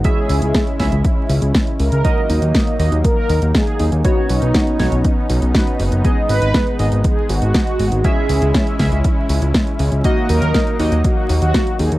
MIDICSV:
0, 0, Header, 1, 6, 480
1, 0, Start_track
1, 0, Tempo, 500000
1, 44, Time_signature, 4, 2, 24, 8
1, 11507, End_track
2, 0, Start_track
2, 0, Title_t, "Analog polysynth"
2, 0, Program_c, 0, 90
2, 45, Note_on_c, 0, 68, 108
2, 966, Note_off_c, 0, 68, 0
2, 1724, Note_on_c, 0, 70, 117
2, 2646, Note_off_c, 0, 70, 0
2, 2925, Note_on_c, 0, 70, 115
2, 3371, Note_off_c, 0, 70, 0
2, 3406, Note_on_c, 0, 68, 109
2, 3851, Note_off_c, 0, 68, 0
2, 3886, Note_on_c, 0, 66, 103
2, 4108, Note_off_c, 0, 66, 0
2, 4127, Note_on_c, 0, 63, 97
2, 5527, Note_off_c, 0, 63, 0
2, 5804, Note_on_c, 0, 68, 98
2, 5912, Note_off_c, 0, 68, 0
2, 6043, Note_on_c, 0, 71, 126
2, 6490, Note_off_c, 0, 71, 0
2, 6763, Note_on_c, 0, 68, 104
2, 7003, Note_on_c, 0, 66, 100
2, 7011, Note_off_c, 0, 68, 0
2, 7231, Note_off_c, 0, 66, 0
2, 7243, Note_on_c, 0, 66, 104
2, 7724, Note_on_c, 0, 68, 105
2, 7738, Note_off_c, 0, 66, 0
2, 8645, Note_off_c, 0, 68, 0
2, 9644, Note_on_c, 0, 66, 91
2, 9882, Note_on_c, 0, 70, 118
2, 9891, Note_off_c, 0, 66, 0
2, 10330, Note_off_c, 0, 70, 0
2, 10604, Note_on_c, 0, 66, 96
2, 10953, Note_off_c, 0, 66, 0
2, 10964, Note_on_c, 0, 66, 105
2, 11299, Note_off_c, 0, 66, 0
2, 11324, Note_on_c, 0, 68, 100
2, 11432, Note_off_c, 0, 68, 0
2, 11507, End_track
3, 0, Start_track
3, 0, Title_t, "Analog polysynth"
3, 0, Program_c, 1, 90
3, 44, Note_on_c, 1, 61, 90
3, 44, Note_on_c, 1, 64, 87
3, 44, Note_on_c, 1, 68, 82
3, 44, Note_on_c, 1, 76, 103
3, 735, Note_off_c, 1, 61, 0
3, 735, Note_off_c, 1, 64, 0
3, 735, Note_off_c, 1, 68, 0
3, 735, Note_off_c, 1, 76, 0
3, 763, Note_on_c, 1, 61, 88
3, 763, Note_on_c, 1, 64, 81
3, 763, Note_on_c, 1, 68, 81
3, 763, Note_on_c, 1, 76, 91
3, 930, Note_off_c, 1, 61, 0
3, 930, Note_off_c, 1, 64, 0
3, 930, Note_off_c, 1, 68, 0
3, 930, Note_off_c, 1, 76, 0
3, 1964, Note_on_c, 1, 58, 89
3, 1964, Note_on_c, 1, 63, 89
3, 1964, Note_on_c, 1, 66, 87
3, 1964, Note_on_c, 1, 75, 107
3, 2655, Note_off_c, 1, 58, 0
3, 2655, Note_off_c, 1, 63, 0
3, 2655, Note_off_c, 1, 66, 0
3, 2655, Note_off_c, 1, 75, 0
3, 2684, Note_on_c, 1, 58, 88
3, 2684, Note_on_c, 1, 63, 74
3, 2684, Note_on_c, 1, 66, 78
3, 2684, Note_on_c, 1, 75, 96
3, 2851, Note_off_c, 1, 58, 0
3, 2851, Note_off_c, 1, 63, 0
3, 2851, Note_off_c, 1, 66, 0
3, 2851, Note_off_c, 1, 75, 0
3, 3883, Note_on_c, 1, 59, 93
3, 3883, Note_on_c, 1, 63, 81
3, 3883, Note_on_c, 1, 66, 87
3, 3883, Note_on_c, 1, 73, 102
3, 4574, Note_off_c, 1, 63, 0
3, 4575, Note_off_c, 1, 59, 0
3, 4575, Note_off_c, 1, 66, 0
3, 4575, Note_off_c, 1, 73, 0
3, 4602, Note_on_c, 1, 63, 79
3, 4602, Note_on_c, 1, 66, 80
3, 4602, Note_on_c, 1, 73, 97
3, 4603, Note_on_c, 1, 59, 84
3, 4770, Note_off_c, 1, 59, 0
3, 4770, Note_off_c, 1, 63, 0
3, 4770, Note_off_c, 1, 66, 0
3, 4770, Note_off_c, 1, 73, 0
3, 5322, Note_on_c, 1, 59, 75
3, 5322, Note_on_c, 1, 66, 70
3, 5323, Note_on_c, 1, 63, 66
3, 5323, Note_on_c, 1, 71, 81
3, 5774, Note_off_c, 1, 59, 0
3, 5774, Note_off_c, 1, 63, 0
3, 5774, Note_off_c, 1, 66, 0
3, 5774, Note_off_c, 1, 71, 0
3, 5802, Note_on_c, 1, 59, 94
3, 5802, Note_on_c, 1, 68, 86
3, 5803, Note_on_c, 1, 63, 88
3, 5803, Note_on_c, 1, 75, 96
3, 6494, Note_off_c, 1, 59, 0
3, 6494, Note_off_c, 1, 68, 0
3, 6494, Note_off_c, 1, 75, 0
3, 6495, Note_off_c, 1, 63, 0
3, 6521, Note_on_c, 1, 63, 80
3, 6522, Note_on_c, 1, 59, 80
3, 6522, Note_on_c, 1, 68, 75
3, 6522, Note_on_c, 1, 75, 96
3, 6689, Note_off_c, 1, 63, 0
3, 6690, Note_off_c, 1, 59, 0
3, 6690, Note_off_c, 1, 68, 0
3, 6690, Note_off_c, 1, 75, 0
3, 7723, Note_on_c, 1, 68, 82
3, 7724, Note_on_c, 1, 61, 93
3, 7724, Note_on_c, 1, 64, 87
3, 7724, Note_on_c, 1, 76, 101
3, 8415, Note_off_c, 1, 61, 0
3, 8415, Note_off_c, 1, 64, 0
3, 8415, Note_off_c, 1, 68, 0
3, 8415, Note_off_c, 1, 76, 0
3, 8444, Note_on_c, 1, 61, 81
3, 8444, Note_on_c, 1, 64, 78
3, 8444, Note_on_c, 1, 68, 79
3, 8444, Note_on_c, 1, 76, 92
3, 8611, Note_off_c, 1, 61, 0
3, 8611, Note_off_c, 1, 64, 0
3, 8611, Note_off_c, 1, 68, 0
3, 8611, Note_off_c, 1, 76, 0
3, 9643, Note_on_c, 1, 63, 80
3, 9643, Note_on_c, 1, 66, 85
3, 9644, Note_on_c, 1, 58, 94
3, 9644, Note_on_c, 1, 75, 105
3, 10335, Note_off_c, 1, 58, 0
3, 10335, Note_off_c, 1, 63, 0
3, 10335, Note_off_c, 1, 66, 0
3, 10335, Note_off_c, 1, 75, 0
3, 10362, Note_on_c, 1, 63, 80
3, 10363, Note_on_c, 1, 58, 84
3, 10363, Note_on_c, 1, 66, 79
3, 10363, Note_on_c, 1, 75, 92
3, 10530, Note_off_c, 1, 58, 0
3, 10530, Note_off_c, 1, 63, 0
3, 10530, Note_off_c, 1, 66, 0
3, 10530, Note_off_c, 1, 75, 0
3, 11507, End_track
4, 0, Start_track
4, 0, Title_t, "Analog synth pad"
4, 0, Program_c, 2, 89
4, 0, Note_on_c, 2, 56, 79
4, 44, Note_on_c, 2, 64, 83
4, 45, Note_on_c, 2, 61, 70
4, 1926, Note_off_c, 2, 56, 0
4, 1945, Note_off_c, 2, 61, 0
4, 1945, Note_off_c, 2, 64, 0
4, 1964, Note_on_c, 2, 54, 72
4, 1964, Note_on_c, 2, 58, 70
4, 1964, Note_on_c, 2, 63, 86
4, 3865, Note_off_c, 2, 54, 0
4, 3865, Note_off_c, 2, 58, 0
4, 3883, Note_on_c, 2, 59, 74
4, 3884, Note_on_c, 2, 61, 68
4, 5785, Note_off_c, 2, 61, 0
4, 5804, Note_on_c, 2, 56, 74
4, 7685, Note_off_c, 2, 59, 0
4, 7686, Note_off_c, 2, 63, 0
4, 7724, Note_on_c, 2, 61, 69
4, 7724, Note_on_c, 2, 64, 83
4, 9606, Note_off_c, 2, 56, 0
4, 9625, Note_off_c, 2, 61, 0
4, 9625, Note_off_c, 2, 64, 0
4, 9643, Note_on_c, 2, 54, 72
4, 9643, Note_on_c, 2, 58, 71
4, 9643, Note_on_c, 2, 63, 86
4, 11507, Note_off_c, 2, 54, 0
4, 11507, Note_off_c, 2, 58, 0
4, 11507, Note_off_c, 2, 63, 0
4, 11507, End_track
5, 0, Start_track
5, 0, Title_t, "Analog synth bass"
5, 0, Program_c, 3, 38
5, 285, Note_on_c, 3, 37, 96
5, 389, Note_off_c, 3, 37, 0
5, 404, Note_on_c, 3, 37, 84
5, 509, Note_off_c, 3, 37, 0
5, 765, Note_on_c, 3, 37, 90
5, 869, Note_off_c, 3, 37, 0
5, 885, Note_on_c, 3, 37, 82
5, 989, Note_off_c, 3, 37, 0
5, 1244, Note_on_c, 3, 37, 97
5, 1349, Note_off_c, 3, 37, 0
5, 1364, Note_on_c, 3, 37, 87
5, 1469, Note_off_c, 3, 37, 0
5, 1724, Note_on_c, 3, 37, 95
5, 1829, Note_off_c, 3, 37, 0
5, 1844, Note_on_c, 3, 37, 82
5, 1949, Note_off_c, 3, 37, 0
5, 2204, Note_on_c, 3, 39, 94
5, 2309, Note_off_c, 3, 39, 0
5, 2324, Note_on_c, 3, 39, 81
5, 2429, Note_off_c, 3, 39, 0
5, 2683, Note_on_c, 3, 39, 94
5, 2788, Note_off_c, 3, 39, 0
5, 2804, Note_on_c, 3, 39, 85
5, 2909, Note_off_c, 3, 39, 0
5, 3164, Note_on_c, 3, 39, 99
5, 3269, Note_off_c, 3, 39, 0
5, 3285, Note_on_c, 3, 39, 81
5, 3389, Note_off_c, 3, 39, 0
5, 3645, Note_on_c, 3, 39, 97
5, 3749, Note_off_c, 3, 39, 0
5, 3764, Note_on_c, 3, 39, 79
5, 3869, Note_off_c, 3, 39, 0
5, 4125, Note_on_c, 3, 35, 95
5, 4229, Note_off_c, 3, 35, 0
5, 4245, Note_on_c, 3, 35, 80
5, 4349, Note_off_c, 3, 35, 0
5, 4605, Note_on_c, 3, 35, 94
5, 4709, Note_off_c, 3, 35, 0
5, 4724, Note_on_c, 3, 35, 81
5, 4829, Note_off_c, 3, 35, 0
5, 5084, Note_on_c, 3, 35, 94
5, 5189, Note_off_c, 3, 35, 0
5, 5204, Note_on_c, 3, 35, 88
5, 5309, Note_off_c, 3, 35, 0
5, 5564, Note_on_c, 3, 30, 90
5, 5669, Note_off_c, 3, 30, 0
5, 5683, Note_on_c, 3, 30, 81
5, 5788, Note_off_c, 3, 30, 0
5, 6044, Note_on_c, 3, 32, 98
5, 6149, Note_off_c, 3, 32, 0
5, 6162, Note_on_c, 3, 32, 82
5, 6268, Note_off_c, 3, 32, 0
5, 6523, Note_on_c, 3, 32, 93
5, 6629, Note_off_c, 3, 32, 0
5, 6644, Note_on_c, 3, 32, 82
5, 6749, Note_off_c, 3, 32, 0
5, 7003, Note_on_c, 3, 32, 96
5, 7108, Note_off_c, 3, 32, 0
5, 7124, Note_on_c, 3, 32, 85
5, 7229, Note_off_c, 3, 32, 0
5, 7484, Note_on_c, 3, 32, 93
5, 7589, Note_off_c, 3, 32, 0
5, 7603, Note_on_c, 3, 32, 81
5, 7709, Note_off_c, 3, 32, 0
5, 7964, Note_on_c, 3, 37, 92
5, 8069, Note_off_c, 3, 37, 0
5, 8085, Note_on_c, 3, 37, 84
5, 8189, Note_off_c, 3, 37, 0
5, 8444, Note_on_c, 3, 37, 97
5, 8549, Note_off_c, 3, 37, 0
5, 8564, Note_on_c, 3, 37, 83
5, 8669, Note_off_c, 3, 37, 0
5, 8923, Note_on_c, 3, 37, 96
5, 9029, Note_off_c, 3, 37, 0
5, 9043, Note_on_c, 3, 37, 84
5, 9148, Note_off_c, 3, 37, 0
5, 9404, Note_on_c, 3, 37, 100
5, 9509, Note_off_c, 3, 37, 0
5, 9525, Note_on_c, 3, 37, 76
5, 9629, Note_off_c, 3, 37, 0
5, 9885, Note_on_c, 3, 39, 99
5, 9989, Note_off_c, 3, 39, 0
5, 10005, Note_on_c, 3, 39, 78
5, 10109, Note_off_c, 3, 39, 0
5, 10363, Note_on_c, 3, 39, 92
5, 10468, Note_off_c, 3, 39, 0
5, 10483, Note_on_c, 3, 39, 83
5, 10588, Note_off_c, 3, 39, 0
5, 10843, Note_on_c, 3, 39, 96
5, 10949, Note_off_c, 3, 39, 0
5, 10963, Note_on_c, 3, 39, 83
5, 11069, Note_off_c, 3, 39, 0
5, 11323, Note_on_c, 3, 39, 98
5, 11428, Note_off_c, 3, 39, 0
5, 11443, Note_on_c, 3, 39, 85
5, 11507, Note_off_c, 3, 39, 0
5, 11507, End_track
6, 0, Start_track
6, 0, Title_t, "Drums"
6, 42, Note_on_c, 9, 42, 81
6, 44, Note_on_c, 9, 36, 124
6, 138, Note_off_c, 9, 42, 0
6, 140, Note_off_c, 9, 36, 0
6, 282, Note_on_c, 9, 46, 99
6, 378, Note_off_c, 9, 46, 0
6, 403, Note_on_c, 9, 42, 54
6, 499, Note_off_c, 9, 42, 0
6, 523, Note_on_c, 9, 38, 111
6, 523, Note_on_c, 9, 42, 76
6, 524, Note_on_c, 9, 36, 117
6, 619, Note_off_c, 9, 38, 0
6, 619, Note_off_c, 9, 42, 0
6, 620, Note_off_c, 9, 36, 0
6, 643, Note_on_c, 9, 42, 36
6, 739, Note_off_c, 9, 42, 0
6, 764, Note_on_c, 9, 36, 57
6, 764, Note_on_c, 9, 38, 64
6, 764, Note_on_c, 9, 46, 91
6, 860, Note_off_c, 9, 36, 0
6, 860, Note_off_c, 9, 38, 0
6, 860, Note_off_c, 9, 46, 0
6, 884, Note_on_c, 9, 42, 50
6, 980, Note_off_c, 9, 42, 0
6, 1004, Note_on_c, 9, 36, 115
6, 1004, Note_on_c, 9, 42, 80
6, 1100, Note_off_c, 9, 36, 0
6, 1100, Note_off_c, 9, 42, 0
6, 1244, Note_on_c, 9, 46, 96
6, 1340, Note_off_c, 9, 46, 0
6, 1363, Note_on_c, 9, 42, 52
6, 1459, Note_off_c, 9, 42, 0
6, 1483, Note_on_c, 9, 38, 126
6, 1483, Note_on_c, 9, 42, 75
6, 1484, Note_on_c, 9, 36, 120
6, 1579, Note_off_c, 9, 38, 0
6, 1579, Note_off_c, 9, 42, 0
6, 1580, Note_off_c, 9, 36, 0
6, 1603, Note_on_c, 9, 42, 37
6, 1699, Note_off_c, 9, 42, 0
6, 1723, Note_on_c, 9, 46, 84
6, 1819, Note_off_c, 9, 46, 0
6, 1843, Note_on_c, 9, 42, 49
6, 1939, Note_off_c, 9, 42, 0
6, 1963, Note_on_c, 9, 42, 79
6, 1964, Note_on_c, 9, 36, 123
6, 2059, Note_off_c, 9, 42, 0
6, 2060, Note_off_c, 9, 36, 0
6, 2204, Note_on_c, 9, 46, 101
6, 2300, Note_off_c, 9, 46, 0
6, 2324, Note_on_c, 9, 42, 53
6, 2420, Note_off_c, 9, 42, 0
6, 2444, Note_on_c, 9, 36, 117
6, 2444, Note_on_c, 9, 38, 124
6, 2444, Note_on_c, 9, 42, 72
6, 2540, Note_off_c, 9, 36, 0
6, 2540, Note_off_c, 9, 38, 0
6, 2540, Note_off_c, 9, 42, 0
6, 2565, Note_on_c, 9, 42, 36
6, 2661, Note_off_c, 9, 42, 0
6, 2684, Note_on_c, 9, 46, 89
6, 2780, Note_off_c, 9, 46, 0
6, 2805, Note_on_c, 9, 42, 51
6, 2901, Note_off_c, 9, 42, 0
6, 2924, Note_on_c, 9, 36, 124
6, 2924, Note_on_c, 9, 42, 77
6, 3020, Note_off_c, 9, 36, 0
6, 3020, Note_off_c, 9, 42, 0
6, 3163, Note_on_c, 9, 46, 92
6, 3259, Note_off_c, 9, 46, 0
6, 3283, Note_on_c, 9, 42, 49
6, 3379, Note_off_c, 9, 42, 0
6, 3404, Note_on_c, 9, 36, 123
6, 3404, Note_on_c, 9, 38, 126
6, 3404, Note_on_c, 9, 42, 78
6, 3500, Note_off_c, 9, 36, 0
6, 3500, Note_off_c, 9, 38, 0
6, 3500, Note_off_c, 9, 42, 0
6, 3523, Note_on_c, 9, 42, 37
6, 3619, Note_off_c, 9, 42, 0
6, 3642, Note_on_c, 9, 46, 86
6, 3738, Note_off_c, 9, 46, 0
6, 3764, Note_on_c, 9, 42, 49
6, 3860, Note_off_c, 9, 42, 0
6, 3883, Note_on_c, 9, 42, 78
6, 3884, Note_on_c, 9, 36, 124
6, 3979, Note_off_c, 9, 42, 0
6, 3980, Note_off_c, 9, 36, 0
6, 4123, Note_on_c, 9, 46, 102
6, 4219, Note_off_c, 9, 46, 0
6, 4243, Note_on_c, 9, 42, 49
6, 4339, Note_off_c, 9, 42, 0
6, 4363, Note_on_c, 9, 38, 122
6, 4363, Note_on_c, 9, 42, 72
6, 4364, Note_on_c, 9, 36, 122
6, 4459, Note_off_c, 9, 38, 0
6, 4459, Note_off_c, 9, 42, 0
6, 4460, Note_off_c, 9, 36, 0
6, 4484, Note_on_c, 9, 42, 36
6, 4580, Note_off_c, 9, 42, 0
6, 4604, Note_on_c, 9, 36, 58
6, 4604, Note_on_c, 9, 38, 67
6, 4604, Note_on_c, 9, 46, 89
6, 4700, Note_off_c, 9, 36, 0
6, 4700, Note_off_c, 9, 38, 0
6, 4700, Note_off_c, 9, 46, 0
6, 4724, Note_on_c, 9, 42, 50
6, 4820, Note_off_c, 9, 42, 0
6, 4843, Note_on_c, 9, 42, 75
6, 4844, Note_on_c, 9, 36, 120
6, 4939, Note_off_c, 9, 42, 0
6, 4940, Note_off_c, 9, 36, 0
6, 5084, Note_on_c, 9, 46, 98
6, 5180, Note_off_c, 9, 46, 0
6, 5204, Note_on_c, 9, 42, 50
6, 5300, Note_off_c, 9, 42, 0
6, 5324, Note_on_c, 9, 36, 119
6, 5324, Note_on_c, 9, 38, 123
6, 5324, Note_on_c, 9, 42, 75
6, 5420, Note_off_c, 9, 36, 0
6, 5420, Note_off_c, 9, 38, 0
6, 5420, Note_off_c, 9, 42, 0
6, 5444, Note_on_c, 9, 42, 33
6, 5540, Note_off_c, 9, 42, 0
6, 5563, Note_on_c, 9, 46, 83
6, 5659, Note_off_c, 9, 46, 0
6, 5683, Note_on_c, 9, 42, 47
6, 5779, Note_off_c, 9, 42, 0
6, 5803, Note_on_c, 9, 42, 75
6, 5804, Note_on_c, 9, 36, 120
6, 5899, Note_off_c, 9, 42, 0
6, 5900, Note_off_c, 9, 36, 0
6, 6042, Note_on_c, 9, 46, 101
6, 6138, Note_off_c, 9, 46, 0
6, 6162, Note_on_c, 9, 42, 50
6, 6258, Note_off_c, 9, 42, 0
6, 6282, Note_on_c, 9, 38, 114
6, 6282, Note_on_c, 9, 42, 72
6, 6284, Note_on_c, 9, 36, 113
6, 6378, Note_off_c, 9, 38, 0
6, 6378, Note_off_c, 9, 42, 0
6, 6380, Note_off_c, 9, 36, 0
6, 6402, Note_on_c, 9, 42, 33
6, 6498, Note_off_c, 9, 42, 0
6, 6521, Note_on_c, 9, 46, 94
6, 6617, Note_off_c, 9, 46, 0
6, 6642, Note_on_c, 9, 42, 49
6, 6738, Note_off_c, 9, 42, 0
6, 6762, Note_on_c, 9, 42, 76
6, 6764, Note_on_c, 9, 36, 115
6, 6858, Note_off_c, 9, 42, 0
6, 6860, Note_off_c, 9, 36, 0
6, 7002, Note_on_c, 9, 46, 98
6, 7098, Note_off_c, 9, 46, 0
6, 7122, Note_on_c, 9, 42, 51
6, 7218, Note_off_c, 9, 42, 0
6, 7242, Note_on_c, 9, 38, 120
6, 7242, Note_on_c, 9, 42, 77
6, 7244, Note_on_c, 9, 36, 114
6, 7338, Note_off_c, 9, 38, 0
6, 7338, Note_off_c, 9, 42, 0
6, 7340, Note_off_c, 9, 36, 0
6, 7363, Note_on_c, 9, 42, 36
6, 7459, Note_off_c, 9, 42, 0
6, 7483, Note_on_c, 9, 46, 86
6, 7579, Note_off_c, 9, 46, 0
6, 7602, Note_on_c, 9, 42, 50
6, 7698, Note_off_c, 9, 42, 0
6, 7722, Note_on_c, 9, 42, 80
6, 7724, Note_on_c, 9, 36, 111
6, 7818, Note_off_c, 9, 42, 0
6, 7820, Note_off_c, 9, 36, 0
6, 7962, Note_on_c, 9, 46, 108
6, 8058, Note_off_c, 9, 46, 0
6, 8083, Note_on_c, 9, 42, 53
6, 8179, Note_off_c, 9, 42, 0
6, 8203, Note_on_c, 9, 38, 107
6, 8203, Note_on_c, 9, 42, 76
6, 8204, Note_on_c, 9, 36, 110
6, 8299, Note_off_c, 9, 38, 0
6, 8299, Note_off_c, 9, 42, 0
6, 8300, Note_off_c, 9, 36, 0
6, 8323, Note_on_c, 9, 42, 36
6, 8419, Note_off_c, 9, 42, 0
6, 8442, Note_on_c, 9, 38, 60
6, 8442, Note_on_c, 9, 46, 98
6, 8444, Note_on_c, 9, 36, 58
6, 8538, Note_off_c, 9, 38, 0
6, 8538, Note_off_c, 9, 46, 0
6, 8540, Note_off_c, 9, 36, 0
6, 8562, Note_on_c, 9, 42, 50
6, 8658, Note_off_c, 9, 42, 0
6, 8682, Note_on_c, 9, 42, 76
6, 8684, Note_on_c, 9, 36, 111
6, 8778, Note_off_c, 9, 42, 0
6, 8780, Note_off_c, 9, 36, 0
6, 8922, Note_on_c, 9, 46, 104
6, 9018, Note_off_c, 9, 46, 0
6, 9043, Note_on_c, 9, 42, 48
6, 9139, Note_off_c, 9, 42, 0
6, 9162, Note_on_c, 9, 38, 120
6, 9162, Note_on_c, 9, 42, 78
6, 9164, Note_on_c, 9, 36, 111
6, 9258, Note_off_c, 9, 38, 0
6, 9258, Note_off_c, 9, 42, 0
6, 9260, Note_off_c, 9, 36, 0
6, 9283, Note_on_c, 9, 42, 38
6, 9379, Note_off_c, 9, 42, 0
6, 9401, Note_on_c, 9, 46, 88
6, 9497, Note_off_c, 9, 46, 0
6, 9522, Note_on_c, 9, 42, 50
6, 9618, Note_off_c, 9, 42, 0
6, 9642, Note_on_c, 9, 42, 85
6, 9644, Note_on_c, 9, 36, 106
6, 9738, Note_off_c, 9, 42, 0
6, 9740, Note_off_c, 9, 36, 0
6, 9881, Note_on_c, 9, 46, 114
6, 9977, Note_off_c, 9, 46, 0
6, 10003, Note_on_c, 9, 42, 54
6, 10099, Note_off_c, 9, 42, 0
6, 10122, Note_on_c, 9, 38, 100
6, 10122, Note_on_c, 9, 42, 77
6, 10124, Note_on_c, 9, 36, 106
6, 10218, Note_off_c, 9, 38, 0
6, 10218, Note_off_c, 9, 42, 0
6, 10220, Note_off_c, 9, 36, 0
6, 10243, Note_on_c, 9, 42, 36
6, 10339, Note_off_c, 9, 42, 0
6, 10363, Note_on_c, 9, 46, 96
6, 10459, Note_off_c, 9, 46, 0
6, 10483, Note_on_c, 9, 42, 56
6, 10579, Note_off_c, 9, 42, 0
6, 10602, Note_on_c, 9, 42, 82
6, 10603, Note_on_c, 9, 36, 112
6, 10698, Note_off_c, 9, 42, 0
6, 10699, Note_off_c, 9, 36, 0
6, 10842, Note_on_c, 9, 46, 101
6, 10938, Note_off_c, 9, 46, 0
6, 10962, Note_on_c, 9, 42, 52
6, 11058, Note_off_c, 9, 42, 0
6, 11082, Note_on_c, 9, 38, 113
6, 11082, Note_on_c, 9, 42, 80
6, 11083, Note_on_c, 9, 36, 110
6, 11178, Note_off_c, 9, 38, 0
6, 11178, Note_off_c, 9, 42, 0
6, 11179, Note_off_c, 9, 36, 0
6, 11202, Note_on_c, 9, 42, 37
6, 11298, Note_off_c, 9, 42, 0
6, 11322, Note_on_c, 9, 46, 93
6, 11418, Note_off_c, 9, 46, 0
6, 11442, Note_on_c, 9, 42, 50
6, 11507, Note_off_c, 9, 42, 0
6, 11507, End_track
0, 0, End_of_file